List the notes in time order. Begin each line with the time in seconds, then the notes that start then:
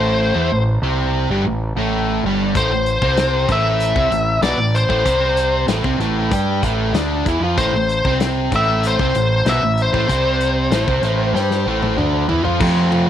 Already playing: A1 A2 A3 C5
0.35 E2 E3 E4
0.52 A1 A2
0.82 C2 C3 C4
1.29 G1 G2 G3
1.44 A1 A2
1.75 A1 A2 A3
2.23 G1 G2 G3
2.55 A1 A2 A3 C5, kick, closed hi-hat
2.70 A1 A2
2.86 closed hi-hat
3.02 C2 C3 C4, kick
3.17 snare, closed hi-hat
3.48 A1 A2 A3 E5, kick, closed hi-hat
3.80 closed hi-hat
3.95 C2 C3 C4, kick
4.11 A1 A2, closed hi-hat
4.41 B1 B2 B3 D5, snare, closed hi-hat
4.57 A1 A2
4.75 C5, closed hi-hat
4.89 A1 A2 A3, kick
5.05 C2 C3 C4, kick, closed hi-hat
5.37 closed hi-hat
5.67 A1 A2 A3, snare, closed hi-hat
5.84 C2 C3 C4, kick
5.98 A1 A2 A3, closed hi-hat
6.31 G2 G3 G4, kick, closed hi-hat
6.63 A1 A2 A3, kick, closed hi-hat
6.93 D2 D3 D4, snare, closed hi-hat
7.25 E2 E3 E4, kick, closed hi-hat
7.40 F2 F3 F4
7.57 A1 A2 A3 C5, kick, closed hi-hat
7.73 A1 A2
7.89 closed hi-hat
8.04 C2 C3 C4, kick
8.20 snare, closed hi-hat
8.52 A1 A2 A3 E5, kick, closed hi-hat
8.83 C5, closed hi-hat
8.99 C2 C3 C4, kick
9.15 A1 A2, closed hi-hat
9.45 B1 B2 B3, snare, closed hi-hat
9.49 E5
9.62 A1 A2
9.78 closed hi-hat
9.82 C5
9.93 A1 A2 A3, kick
10.08 C2 C3 C4, kick, closed hi-hat
10.41 closed hi-hat
10.71 A1 A2 A3, snare, closed hi-hat
10.87 C2 C3 C4, kick
11.02 A1 A2 A3, closed hi-hat
11.33 G2 G3 G4, snare
11.51 snare
11.66 A1 A2 A3
11.83 high tom
11.97 D2 D3 D4, mid tom
12.28 E2 E3 E4, floor tom
12.44 F2 F3 F4, floor tom
12.60 F2 C3 F3 A3 C4 F4, kick, crash
12.92 F3 A3 C4 F4, ride
13.06 F4